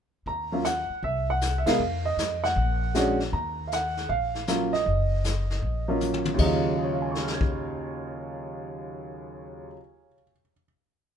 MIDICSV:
0, 0, Header, 1, 5, 480
1, 0, Start_track
1, 0, Key_signature, -6, "minor"
1, 0, Tempo, 383142
1, 336, Time_signature, 4, 2, 24, 8
1, 13993, End_track
2, 0, Start_track
2, 0, Title_t, "Upright piano"
2, 0, Program_c, 0, 0
2, 344, Note_on_c, 0, 82, 80
2, 654, Note_on_c, 0, 54, 53
2, 663, Note_on_c, 0, 58, 46
2, 663, Note_on_c, 0, 61, 54
2, 673, Note_on_c, 0, 65, 57
2, 787, Note_off_c, 0, 82, 0
2, 799, Note_off_c, 0, 54, 0
2, 804, Note_off_c, 0, 58, 0
2, 804, Note_off_c, 0, 61, 0
2, 809, Note_off_c, 0, 65, 0
2, 812, Note_on_c, 0, 78, 81
2, 1260, Note_off_c, 0, 78, 0
2, 1303, Note_on_c, 0, 76, 82
2, 1595, Note_off_c, 0, 76, 0
2, 1630, Note_on_c, 0, 78, 83
2, 1982, Note_on_c, 0, 76, 63
2, 1996, Note_off_c, 0, 78, 0
2, 2082, Note_on_c, 0, 77, 76
2, 2087, Note_on_c, 0, 56, 60
2, 2091, Note_on_c, 0, 59, 51
2, 2095, Note_off_c, 0, 76, 0
2, 2100, Note_on_c, 0, 70, 66
2, 2102, Note_on_c, 0, 63, 54
2, 2235, Note_off_c, 0, 56, 0
2, 2237, Note_off_c, 0, 59, 0
2, 2242, Note_off_c, 0, 70, 0
2, 2243, Note_off_c, 0, 63, 0
2, 2573, Note_on_c, 0, 75, 78
2, 2581, Note_off_c, 0, 77, 0
2, 3052, Note_on_c, 0, 78, 90
2, 3066, Note_off_c, 0, 75, 0
2, 3691, Note_on_c, 0, 56, 66
2, 3705, Note_on_c, 0, 61, 63
2, 3705, Note_on_c, 0, 62, 61
2, 3709, Note_on_c, 0, 66, 77
2, 3960, Note_off_c, 0, 78, 0
2, 3977, Note_off_c, 0, 56, 0
2, 3984, Note_off_c, 0, 61, 0
2, 3984, Note_off_c, 0, 62, 0
2, 3987, Note_off_c, 0, 66, 0
2, 4173, Note_on_c, 0, 82, 80
2, 4563, Note_off_c, 0, 82, 0
2, 4604, Note_on_c, 0, 77, 51
2, 4656, Note_off_c, 0, 77, 0
2, 4677, Note_on_c, 0, 78, 79
2, 5126, Note_on_c, 0, 77, 76
2, 5157, Note_off_c, 0, 78, 0
2, 5573, Note_off_c, 0, 77, 0
2, 5613, Note_on_c, 0, 54, 64
2, 5615, Note_on_c, 0, 58, 56
2, 5620, Note_on_c, 0, 61, 54
2, 5623, Note_on_c, 0, 65, 67
2, 5897, Note_off_c, 0, 54, 0
2, 5897, Note_off_c, 0, 58, 0
2, 5900, Note_off_c, 0, 61, 0
2, 5902, Note_off_c, 0, 65, 0
2, 5924, Note_on_c, 0, 75, 90
2, 7368, Note_on_c, 0, 54, 58
2, 7376, Note_on_c, 0, 58, 55
2, 7386, Note_on_c, 0, 61, 57
2, 7386, Note_on_c, 0, 65, 62
2, 7475, Note_off_c, 0, 75, 0
2, 7944, Note_on_c, 0, 39, 67
2, 7975, Note_off_c, 0, 54, 0
2, 7979, Note_off_c, 0, 58, 0
2, 7984, Note_off_c, 0, 61, 0
2, 7984, Note_off_c, 0, 65, 0
2, 7992, Note_on_c, 0, 49, 58
2, 8006, Note_on_c, 0, 75, 64
2, 8040, Note_on_c, 0, 54, 62
2, 8092, Note_on_c, 0, 65, 74
2, 8480, Note_on_c, 0, 68, 39
2, 8577, Note_on_c, 0, 73, 41
2, 8684, Note_on_c, 0, 77, 38
2, 8795, Note_on_c, 0, 80, 37
2, 8916, Note_on_c, 0, 85, 34
2, 9059, Note_on_c, 0, 89, 34
2, 9200, Note_on_c, 0, 92, 31
2, 12121, Note_off_c, 0, 39, 0
2, 12133, Note_off_c, 0, 75, 0
2, 12169, Note_off_c, 0, 49, 0
2, 12217, Note_off_c, 0, 54, 0
2, 12269, Note_off_c, 0, 65, 0
2, 12607, Note_off_c, 0, 68, 0
2, 12704, Note_off_c, 0, 73, 0
2, 12810, Note_off_c, 0, 77, 0
2, 12921, Note_off_c, 0, 80, 0
2, 13042, Note_off_c, 0, 85, 0
2, 13186, Note_off_c, 0, 89, 0
2, 13327, Note_off_c, 0, 92, 0
2, 13993, End_track
3, 0, Start_track
3, 0, Title_t, "Upright bass"
3, 0, Program_c, 1, 32
3, 326, Note_on_c, 1, 39, 68
3, 1079, Note_off_c, 1, 39, 0
3, 1287, Note_on_c, 1, 36, 82
3, 2039, Note_off_c, 1, 36, 0
3, 2082, Note_on_c, 1, 48, 62
3, 2237, Note_off_c, 1, 48, 0
3, 2246, Note_on_c, 1, 41, 74
3, 2695, Note_off_c, 1, 41, 0
3, 2716, Note_on_c, 1, 41, 66
3, 3170, Note_off_c, 1, 41, 0
3, 3209, Note_on_c, 1, 34, 88
3, 4121, Note_off_c, 1, 34, 0
3, 4166, Note_on_c, 1, 39, 82
3, 5078, Note_off_c, 1, 39, 0
3, 5133, Note_on_c, 1, 34, 78
3, 6042, Note_off_c, 1, 34, 0
3, 6086, Note_on_c, 1, 30, 76
3, 6998, Note_off_c, 1, 30, 0
3, 7044, Note_on_c, 1, 34, 71
3, 7957, Note_off_c, 1, 34, 0
3, 8000, Note_on_c, 1, 39, 81
3, 12126, Note_off_c, 1, 39, 0
3, 13993, End_track
4, 0, Start_track
4, 0, Title_t, "Muted upright bass strokes"
4, 1129, Note_on_c, 9, 29, 33
4, 1254, Note_off_c, 9, 29, 0
4, 13993, End_track
5, 0, Start_track
5, 0, Title_t, "Drums"
5, 335, Note_on_c, 9, 36, 34
5, 341, Note_on_c, 9, 25, 44
5, 460, Note_off_c, 9, 36, 0
5, 808, Note_on_c, 9, 44, 53
5, 814, Note_on_c, 9, 38, 52
5, 933, Note_off_c, 9, 44, 0
5, 939, Note_off_c, 9, 38, 0
5, 1287, Note_off_c, 9, 25, 0
5, 1287, Note_on_c, 9, 25, 43
5, 1293, Note_on_c, 9, 36, 27
5, 1419, Note_off_c, 9, 36, 0
5, 1769, Note_on_c, 9, 44, 53
5, 1775, Note_on_c, 9, 38, 52
5, 1894, Note_off_c, 9, 44, 0
5, 1901, Note_off_c, 9, 38, 0
5, 2084, Note_on_c, 9, 51, 61
5, 2090, Note_on_c, 9, 38, 69
5, 2209, Note_off_c, 9, 51, 0
5, 2215, Note_off_c, 9, 38, 0
5, 2265, Note_off_c, 9, 25, 0
5, 2265, Note_on_c, 9, 25, 42
5, 2733, Note_on_c, 9, 44, 56
5, 2739, Note_on_c, 9, 38, 53
5, 2858, Note_off_c, 9, 44, 0
5, 2865, Note_off_c, 9, 38, 0
5, 3057, Note_on_c, 9, 38, 31
5, 3182, Note_off_c, 9, 38, 0
5, 3216, Note_on_c, 9, 36, 28
5, 3225, Note_off_c, 9, 25, 0
5, 3225, Note_on_c, 9, 25, 38
5, 3341, Note_off_c, 9, 36, 0
5, 3690, Note_on_c, 9, 44, 55
5, 3697, Note_on_c, 9, 38, 56
5, 3816, Note_off_c, 9, 44, 0
5, 3822, Note_off_c, 9, 38, 0
5, 4011, Note_on_c, 9, 38, 36
5, 4136, Note_off_c, 9, 38, 0
5, 4173, Note_on_c, 9, 36, 31
5, 4179, Note_off_c, 9, 25, 0
5, 4179, Note_on_c, 9, 25, 48
5, 4298, Note_off_c, 9, 36, 0
5, 4655, Note_on_c, 9, 44, 55
5, 4661, Note_on_c, 9, 38, 51
5, 4780, Note_off_c, 9, 44, 0
5, 4787, Note_off_c, 9, 38, 0
5, 4973, Note_on_c, 9, 38, 32
5, 5098, Note_off_c, 9, 38, 0
5, 5130, Note_off_c, 9, 25, 0
5, 5130, Note_on_c, 9, 25, 34
5, 5131, Note_on_c, 9, 36, 31
5, 5256, Note_off_c, 9, 36, 0
5, 5447, Note_on_c, 9, 38, 35
5, 5572, Note_off_c, 9, 38, 0
5, 5603, Note_on_c, 9, 44, 63
5, 5610, Note_on_c, 9, 38, 58
5, 5729, Note_off_c, 9, 44, 0
5, 5735, Note_off_c, 9, 38, 0
5, 5935, Note_on_c, 9, 38, 34
5, 6060, Note_off_c, 9, 38, 0
5, 6092, Note_off_c, 9, 25, 0
5, 6092, Note_on_c, 9, 25, 47
5, 6092, Note_on_c, 9, 36, 34
5, 6218, Note_off_c, 9, 36, 0
5, 6567, Note_on_c, 9, 44, 60
5, 6573, Note_on_c, 9, 38, 52
5, 6692, Note_off_c, 9, 44, 0
5, 6698, Note_off_c, 9, 38, 0
5, 6895, Note_on_c, 9, 38, 32
5, 7020, Note_off_c, 9, 38, 0
5, 7047, Note_on_c, 9, 36, 27
5, 7050, Note_off_c, 9, 25, 0
5, 7050, Note_on_c, 9, 25, 43
5, 7172, Note_off_c, 9, 36, 0
5, 7523, Note_on_c, 9, 44, 48
5, 7529, Note_on_c, 9, 48, 41
5, 7648, Note_off_c, 9, 44, 0
5, 7654, Note_off_c, 9, 48, 0
5, 7687, Note_on_c, 9, 48, 53
5, 7813, Note_off_c, 9, 48, 0
5, 7834, Note_on_c, 9, 48, 71
5, 7960, Note_off_c, 9, 48, 0
5, 7998, Note_on_c, 9, 49, 60
5, 8004, Note_on_c, 9, 36, 55
5, 8123, Note_off_c, 9, 49, 0
5, 8129, Note_off_c, 9, 36, 0
5, 8390, Note_off_c, 9, 25, 0
5, 8959, Note_on_c, 9, 38, 50
5, 9084, Note_off_c, 9, 38, 0
5, 9113, Note_on_c, 9, 38, 57
5, 9238, Note_off_c, 9, 38, 0
5, 9281, Note_on_c, 9, 36, 80
5, 9406, Note_off_c, 9, 36, 0
5, 13993, End_track
0, 0, End_of_file